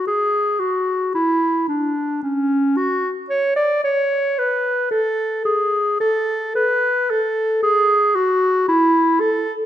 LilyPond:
\new Staff \with { instrumentName = "Clarinet" } { \time 3/4 \key fis \minor \tempo 4 = 56 gis'8 fis'8 e'8 d'8 cis'8 fis'16 r16 | cis''16 d''16 cis''8 b'8 a'8 gis'8 a'8 | b'8 a'8 gis'8 fis'8 e'8 a'16 r16 | }